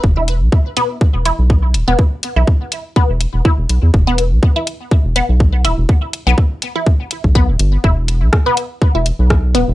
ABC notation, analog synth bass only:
X:1
M:4/4
L:1/16
Q:"Swing 16ths" 1/4=123
K:Em
V:1 name="Analog synth bass" clef=bass
E,,,3 B,,, z4 z E,,, z B,,,3 D,,, E,,, | z3 B,,, z4 z E,,, z E,,, z E,,, B,,, E,, | E,,,3 B,,, z4 z E,,, z B,,,3 D,,, E,,, | z3 B,,, z6 z B,,,2 D,,, G,,, z |
E,,,3 B,,, z4 z E,,, z B,,,3 D,,, E,,, |]